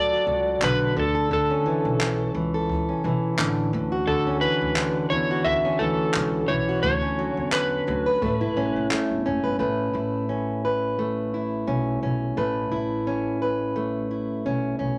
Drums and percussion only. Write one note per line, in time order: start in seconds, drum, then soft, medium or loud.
0.62 clap loud
1.31 kick loud
2.01 clap loud
2.69 kick loud
3.39 clap loud
4.07 kick loud
4.76 clap loud
5.45 kick medium
6.14 clap loud
6.84 kick loud
7.52 clap loud
8.22 kick loud
8.91 clap loud